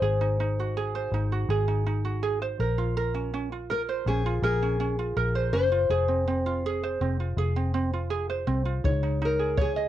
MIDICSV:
0, 0, Header, 1, 6, 480
1, 0, Start_track
1, 0, Tempo, 735294
1, 15, Time_signature, 4, 2, 24, 8
1, 6452, End_track
2, 0, Start_track
2, 0, Title_t, "Nylon-string guitar"
2, 0, Program_c, 0, 24
2, 0, Note_on_c, 0, 72, 87
2, 1189, Note_off_c, 0, 72, 0
2, 2424, Note_on_c, 0, 70, 77
2, 2487, Note_off_c, 0, 70, 0
2, 2665, Note_on_c, 0, 68, 70
2, 2893, Note_off_c, 0, 68, 0
2, 2901, Note_on_c, 0, 68, 77
2, 3607, Note_off_c, 0, 68, 0
2, 3609, Note_on_c, 0, 72, 92
2, 5024, Note_off_c, 0, 72, 0
2, 6038, Note_on_c, 0, 70, 80
2, 6272, Note_off_c, 0, 70, 0
2, 6276, Note_on_c, 0, 68, 82
2, 6452, Note_off_c, 0, 68, 0
2, 6452, End_track
3, 0, Start_track
3, 0, Title_t, "Ukulele"
3, 0, Program_c, 1, 24
3, 0, Note_on_c, 1, 63, 54
3, 0, Note_on_c, 1, 68, 39
3, 0, Note_on_c, 1, 75, 50
3, 14, Note_off_c, 1, 68, 0
3, 14, Note_on_c, 1, 68, 65
3, 133, Note_off_c, 1, 63, 0
3, 135, Note_on_c, 1, 63, 53
3, 252, Note_off_c, 1, 63, 0
3, 259, Note_on_c, 1, 63, 57
3, 387, Note_on_c, 1, 66, 51
3, 493, Note_off_c, 1, 68, 0
3, 500, Note_on_c, 1, 68, 69
3, 615, Note_off_c, 1, 75, 0
3, 618, Note_on_c, 1, 72, 53
3, 734, Note_off_c, 1, 63, 0
3, 742, Note_on_c, 1, 63, 54
3, 853, Note_off_c, 1, 66, 0
3, 861, Note_on_c, 1, 66, 52
3, 970, Note_off_c, 1, 68, 0
3, 978, Note_on_c, 1, 68, 68
3, 1087, Note_off_c, 1, 63, 0
3, 1094, Note_on_c, 1, 63, 52
3, 1208, Note_off_c, 1, 63, 0
3, 1216, Note_on_c, 1, 63, 57
3, 1327, Note_off_c, 1, 66, 0
3, 1335, Note_on_c, 1, 66, 49
3, 1446, Note_off_c, 1, 68, 0
3, 1454, Note_on_c, 1, 68, 67
3, 1575, Note_off_c, 1, 68, 0
3, 1578, Note_off_c, 1, 72, 0
3, 1578, Note_on_c, 1, 72, 57
3, 1696, Note_on_c, 1, 70, 74
3, 1741, Note_off_c, 1, 66, 0
3, 1742, Note_off_c, 1, 63, 0
3, 1815, Note_on_c, 1, 65, 55
3, 1930, Note_off_c, 1, 70, 0
3, 1938, Note_on_c, 1, 70, 70
3, 1957, Note_off_c, 1, 72, 0
3, 2053, Note_on_c, 1, 61, 51
3, 2170, Note_off_c, 1, 61, 0
3, 2178, Note_on_c, 1, 61, 58
3, 2296, Note_off_c, 1, 61, 0
3, 2299, Note_off_c, 1, 65, 0
3, 2299, Note_on_c, 1, 65, 51
3, 2408, Note_off_c, 1, 70, 0
3, 2416, Note_on_c, 1, 70, 64
3, 2538, Note_on_c, 1, 72, 53
3, 2657, Note_off_c, 1, 65, 0
3, 2659, Note_on_c, 1, 61, 55
3, 2777, Note_off_c, 1, 61, 0
3, 2780, Note_on_c, 1, 65, 55
3, 2886, Note_off_c, 1, 70, 0
3, 2894, Note_on_c, 1, 70, 77
3, 3015, Note_off_c, 1, 65, 0
3, 3018, Note_on_c, 1, 61, 58
3, 3124, Note_off_c, 1, 61, 0
3, 3132, Note_on_c, 1, 61, 61
3, 3253, Note_off_c, 1, 61, 0
3, 3255, Note_on_c, 1, 65, 49
3, 3364, Note_off_c, 1, 70, 0
3, 3372, Note_on_c, 1, 70, 65
3, 3491, Note_off_c, 1, 72, 0
3, 3493, Note_on_c, 1, 72, 55
3, 3610, Note_off_c, 1, 65, 0
3, 3613, Note_on_c, 1, 61, 58
3, 3730, Note_off_c, 1, 61, 0
3, 3732, Note_on_c, 1, 65, 57
3, 3851, Note_off_c, 1, 70, 0
3, 3854, Note_on_c, 1, 68, 73
3, 3968, Note_off_c, 1, 65, 0
3, 3971, Note_on_c, 1, 60, 47
3, 4089, Note_off_c, 1, 60, 0
3, 4097, Note_on_c, 1, 60, 59
3, 4218, Note_on_c, 1, 65, 53
3, 4344, Note_off_c, 1, 65, 0
3, 4347, Note_off_c, 1, 68, 0
3, 4347, Note_on_c, 1, 68, 70
3, 4461, Note_off_c, 1, 72, 0
3, 4461, Note_on_c, 1, 72, 54
3, 4569, Note_off_c, 1, 60, 0
3, 4577, Note_on_c, 1, 60, 53
3, 4697, Note_off_c, 1, 60, 0
3, 4700, Note_on_c, 1, 65, 47
3, 4816, Note_off_c, 1, 68, 0
3, 4819, Note_on_c, 1, 68, 67
3, 4935, Note_off_c, 1, 65, 0
3, 4937, Note_on_c, 1, 60, 56
3, 5046, Note_off_c, 1, 60, 0
3, 5054, Note_on_c, 1, 60, 58
3, 5178, Note_off_c, 1, 60, 0
3, 5180, Note_on_c, 1, 65, 46
3, 5287, Note_off_c, 1, 72, 0
3, 5289, Note_off_c, 1, 68, 0
3, 5289, Note_on_c, 1, 68, 68
3, 5413, Note_off_c, 1, 68, 0
3, 5415, Note_on_c, 1, 72, 50
3, 5526, Note_off_c, 1, 65, 0
3, 5529, Note_on_c, 1, 60, 57
3, 5646, Note_off_c, 1, 60, 0
3, 5649, Note_on_c, 1, 65, 53
3, 5775, Note_on_c, 1, 73, 65
3, 5818, Note_off_c, 1, 65, 0
3, 5821, Note_off_c, 1, 72, 0
3, 5893, Note_on_c, 1, 63, 49
3, 6014, Note_off_c, 1, 63, 0
3, 6016, Note_on_c, 1, 63, 64
3, 6132, Note_on_c, 1, 68, 47
3, 6243, Note_off_c, 1, 73, 0
3, 6250, Note_on_c, 1, 73, 60
3, 6371, Note_off_c, 1, 73, 0
3, 6374, Note_on_c, 1, 75, 51
3, 6452, Note_off_c, 1, 63, 0
3, 6452, Note_off_c, 1, 68, 0
3, 6452, Note_off_c, 1, 75, 0
3, 6452, End_track
4, 0, Start_track
4, 0, Title_t, "Felt piano"
4, 0, Program_c, 2, 0
4, 5771, Note_on_c, 2, 56, 73
4, 5779, Note_on_c, 2, 63, 73
4, 5784, Note_on_c, 2, 73, 85
4, 5886, Control_c, 2, 64, 127
4, 6452, Note_off_c, 2, 56, 0
4, 6452, Note_off_c, 2, 63, 0
4, 6452, Note_off_c, 2, 73, 0
4, 6452, End_track
5, 0, Start_track
5, 0, Title_t, "Fingered electric bass"
5, 0, Program_c, 3, 33
5, 10, Note_on_c, 3, 32, 92
5, 705, Note_off_c, 3, 32, 0
5, 727, Note_on_c, 3, 32, 81
5, 950, Note_off_c, 3, 32, 0
5, 969, Note_on_c, 3, 32, 99
5, 1664, Note_off_c, 3, 32, 0
5, 1693, Note_on_c, 3, 34, 88
5, 2625, Note_off_c, 3, 34, 0
5, 2650, Note_on_c, 3, 34, 84
5, 2871, Note_off_c, 3, 34, 0
5, 2886, Note_on_c, 3, 34, 92
5, 3342, Note_off_c, 3, 34, 0
5, 3371, Note_on_c, 3, 34, 83
5, 3592, Note_off_c, 3, 34, 0
5, 3606, Note_on_c, 3, 30, 78
5, 3829, Note_off_c, 3, 30, 0
5, 3847, Note_on_c, 3, 29, 83
5, 4543, Note_off_c, 3, 29, 0
5, 4574, Note_on_c, 3, 29, 72
5, 4794, Note_off_c, 3, 29, 0
5, 4809, Note_on_c, 3, 29, 93
5, 5504, Note_off_c, 3, 29, 0
5, 5528, Note_on_c, 3, 36, 70
5, 5751, Note_off_c, 3, 36, 0
5, 5770, Note_on_c, 3, 37, 93
5, 6452, Note_off_c, 3, 37, 0
5, 6452, End_track
6, 0, Start_track
6, 0, Title_t, "Drums"
6, 5772, Note_on_c, 9, 36, 100
6, 5837, Note_off_c, 9, 36, 0
6, 6251, Note_on_c, 9, 36, 100
6, 6316, Note_off_c, 9, 36, 0
6, 6452, End_track
0, 0, End_of_file